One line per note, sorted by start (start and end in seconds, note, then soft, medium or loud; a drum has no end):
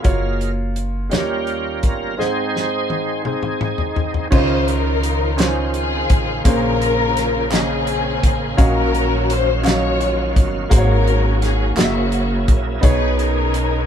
0.02 1.08 F#1 medium
0.02 0.51 G#3 soft
0.02 0.68 A#3 medium
0.02 0.52 A#3 soft
0.02 0.68 F4 medium
0.02 0.69 F#4 medium
0.02 0.69 C#5 medium
0.02 0.52 F5 soft
0.02 kick loud
0.02 closed hi-hat medium
0.41 closed hi-hat soft
0.76 closed hi-hat medium
1.09 2.14 D#3 medium
1.09 2.14 G3 medium
1.09 1.75 A#3 medium
1.09 2.15 A#3 medium
1.09 2.15 C#4 soft
1.09 1.75 D#4 medium
1.09 2.15 F4 soft
1.09 1.76 G4 soft
1.09 1.79 G4 medium
1.09 1.76 C#5 medium
1.09 snare medium
1.09 closed hi-hat medium
1.47 closed hi-hat soft
1.82 2.16 G1 medium
1.82 2.19 A#4 medium
1.82 kick medium
1.82 closed hi-hat medium
2.17 3.21 G#2 medium
2.17 4.28 G#3 soft
2.17 2.82 C4 medium
2.17 3.24 C4 soft
2.17 2.82 D#4 medium
2.17 3.22 D#4 medium
2.17 2.83 G#4 medium
2.17 3.22 G#4 medium
2.17 3.22 C5 medium
2.17 2.84 D#5 medium
2.17 snare soft
2.56 snare medium
2.90 high tom medium
3.25 3.89 C4 medium
3.25 4.28 C4 soft
3.25 3.89 D#4 medium
3.25 4.28 D#4 soft
3.25 3.90 G#4 soft
3.25 4.02 G#4 medium
3.25 3.90 C5 medium
3.25 mid tom medium
3.43 mid tom medium
3.61 mid tom medium
3.78 floor tom medium
3.96 floor tom medium
4.14 floor tom medium
4.31 6.05 C#2 medium
4.31 6.43 C#3 soft
4.31 5.35 C#3 medium
4.31 6.43 D#3 medium
4.31 4.95 C#4 medium
4.31 4.68 D#4 medium
4.31 4.96 F4 medium
4.31 6.43 F4 medium
4.31 4.68 F4 medium
4.31 6.43 C5 medium
4.31 4.96 C5 medium
4.31 4.66 C5 medium
4.31 4.97 D#5 medium
4.31 kick loud
4.31 crash medium
4.68 5.71 D#4 medium
4.68 5.71 F4 medium
4.68 5.40 A#4 medium
4.68 closed hi-hat medium
5.03 closed hi-hat medium
5.37 6.02 C#4 medium
5.37 5.45 D#4 soft
5.37 5.74 G#4 medium
5.37 6.03 C5 medium
5.37 6.03 D#5 medium
5.37 snare loud
5.37 clap medium
5.37 closed hi-hat medium
5.44 6.06 F4 medium
5.74 6.41 C4 medium
5.74 6.42 F4 medium
5.74 6.42 G#4 medium
5.74 closed hi-hat soft
6.10 6.42 A1 medium
6.10 kick loud
6.10 closed hi-hat medium
6.44 8.19 A#1 loud
6.44 7.48 A#2 medium
6.44 8.56 C#3 medium
6.44 7.09 A#3 medium
6.44 8.56 A#3 medium
6.44 7.09 C#4 medium
6.44 7.48 C#4 medium
6.44 7.48 F4 medium
6.44 7.10 G#4 medium
6.44 8.56 G#4 medium
6.44 7.53 A#4 loud
6.44 8.56 C5 medium
6.44 7.10 C5 medium
6.44 kick loud
6.44 closed hi-hat loud
6.82 closed hi-hat medium
7.17 snare soft
7.17 closed hi-hat medium
7.50 8.16 C#3 medium
7.50 8.15 A#3 medium
7.50 8.55 C4 medium
7.50 8.55 C#4 medium
7.50 8.16 G#4 medium
7.50 8.59 G#4 medium
7.50 8.16 D#5 medium
7.50 snare medium
7.50 clap medium
7.50 closed hi-hat medium
7.87 closed hi-hat soft
8.23 8.56 A1 medium
8.23 kick medium
8.23 closed hi-hat medium
8.57 10.32 A#1 loud
8.57 9.61 A#2 medium
8.57 10.69 D#3 medium
8.57 12.79 F#3 medium
8.57 9.22 C#4 medium
8.57 11.74 C#4 medium
8.57 9.61 C#4 medium
8.57 9.61 F#4 medium
8.57 9.22 F#4 medium
8.57 9.29 A#4 loud
8.57 9.23 D#5 medium
8.57 10.69 F5 medium
8.57 9.22 F5 medium
8.57 kick loud
8.57 closed hi-hat medium
8.95 closed hi-hat soft
9.30 9.65 C5 medium
9.30 closed hi-hat medium
9.63 10.29 F#3 medium
9.63 10.28 C#4 medium
9.63 10.68 F4 medium
9.63 10.68 F#4 medium
9.63 10.36 C#5 medium
9.63 10.29 D#5 medium
9.63 10.28 F5 medium
9.63 clap medium
9.63 closed hi-hat medium
9.68 snare medium
10.01 closed hi-hat soft
10.36 10.69 G1 medium
10.36 kick medium
10.36 closed hi-hat medium
10.69 11.73 G#1 loud
10.69 11.73 G#2 medium
10.69 11.34 A#3 medium
10.69 12.81 A#3 medium
10.69 11.74 C#4 medium
10.69 11.35 F#4 medium
10.69 11.74 F#4 medium
10.69 12.81 G#4 medium
10.69 11.35 G#4 medium
10.69 11.38 A#4 loud
10.69 10.78 C5 medium
10.69 kick loud
10.69 closed hi-hat loud
10.78 11.39 C#5 medium
11.07 closed hi-hat soft
11.42 11.77 G#4 medium
11.42 snare soft
11.42 closed hi-hat medium
11.75 12.44 F#1 loud
11.75 12.40 A#3 medium
11.75 12.80 A#3 medium
11.75 12.80 C#4 medium
11.75 12.82 E4 medium
11.75 12.52 F#4 medium
11.75 12.41 F#4 medium
11.75 12.41 G#4 medium
11.75 11.84 D#5 medium
11.75 snare loud
11.75 clap medium
11.75 closed hi-hat medium
11.84 12.45 E5 medium
12.12 closed hi-hat medium
12.48 12.81 A#1 medium
12.48 kick medium
12.48 closed hi-hat medium
12.81 13.86 B1 medium
12.81 13.85 B2 medium
12.81 13.46 B3 medium
12.81 13.86 B3 medium
12.81 13.86 C#4 medium
12.81 13.46 D#4 medium
12.81 13.86 D#4 medium
12.81 13.19 D#4 medium
12.81 13.47 G#4 medium
12.81 13.86 G#4 medium
12.81 13.16 B4 medium
12.81 13.48 C#5 medium
12.81 kick loud
12.81 closed hi-hat medium
13.18 13.86 C#4 medium
13.18 13.86 D#4 medium
13.18 13.86 A#4 medium
13.18 closed hi-hat soft
13.54 closed hi-hat medium